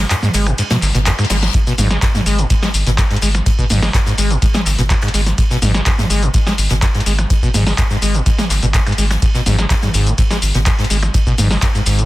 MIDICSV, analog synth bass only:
0, 0, Header, 1, 2, 480
1, 0, Start_track
1, 0, Key_signature, 5, "minor"
1, 0, Tempo, 480000
1, 1543, Time_signature, 4, 2, 24, 8
1, 12054, End_track
2, 0, Start_track
2, 0, Title_t, "Analog synth bass"
2, 0, Program_c, 0, 38
2, 342, Note_on_c, 0, 32, 82
2, 534, Note_off_c, 0, 32, 0
2, 822, Note_on_c, 0, 32, 84
2, 920, Note_off_c, 0, 32, 0
2, 946, Note_on_c, 0, 32, 96
2, 1134, Note_off_c, 0, 32, 0
2, 1302, Note_on_c, 0, 32, 96
2, 1494, Note_off_c, 0, 32, 0
2, 1782, Note_on_c, 0, 32, 104
2, 1974, Note_off_c, 0, 32, 0
2, 2262, Note_on_c, 0, 32, 87
2, 2454, Note_off_c, 0, 32, 0
2, 2742, Note_on_c, 0, 32, 86
2, 2840, Note_off_c, 0, 32, 0
2, 2866, Note_on_c, 0, 32, 94
2, 3054, Note_off_c, 0, 32, 0
2, 3222, Note_on_c, 0, 32, 94
2, 3414, Note_off_c, 0, 32, 0
2, 3702, Note_on_c, 0, 32, 97
2, 3894, Note_off_c, 0, 32, 0
2, 4181, Note_on_c, 0, 32, 85
2, 4374, Note_off_c, 0, 32, 0
2, 4661, Note_on_c, 0, 32, 86
2, 4759, Note_off_c, 0, 32, 0
2, 4784, Note_on_c, 0, 32, 91
2, 4974, Note_off_c, 0, 32, 0
2, 5141, Note_on_c, 0, 32, 92
2, 5333, Note_off_c, 0, 32, 0
2, 5621, Note_on_c, 0, 32, 104
2, 5813, Note_off_c, 0, 32, 0
2, 6102, Note_on_c, 0, 32, 86
2, 6294, Note_off_c, 0, 32, 0
2, 6582, Note_on_c, 0, 32, 85
2, 6680, Note_off_c, 0, 32, 0
2, 6705, Note_on_c, 0, 32, 93
2, 6894, Note_off_c, 0, 32, 0
2, 7062, Note_on_c, 0, 32, 96
2, 7254, Note_off_c, 0, 32, 0
2, 7542, Note_on_c, 0, 32, 101
2, 7734, Note_off_c, 0, 32, 0
2, 8022, Note_on_c, 0, 32, 87
2, 8214, Note_off_c, 0, 32, 0
2, 8502, Note_on_c, 0, 32, 85
2, 8600, Note_off_c, 0, 32, 0
2, 8626, Note_on_c, 0, 32, 88
2, 8814, Note_off_c, 0, 32, 0
2, 8982, Note_on_c, 0, 32, 94
2, 9174, Note_off_c, 0, 32, 0
2, 9462, Note_on_c, 0, 32, 100
2, 9654, Note_off_c, 0, 32, 0
2, 9942, Note_on_c, 0, 32, 87
2, 10134, Note_off_c, 0, 32, 0
2, 10423, Note_on_c, 0, 32, 88
2, 10521, Note_off_c, 0, 32, 0
2, 10546, Note_on_c, 0, 32, 93
2, 10735, Note_off_c, 0, 32, 0
2, 10903, Note_on_c, 0, 32, 98
2, 11094, Note_off_c, 0, 32, 0
2, 11382, Note_on_c, 0, 32, 100
2, 11574, Note_off_c, 0, 32, 0
2, 11862, Note_on_c, 0, 32, 85
2, 12054, Note_off_c, 0, 32, 0
2, 12054, End_track
0, 0, End_of_file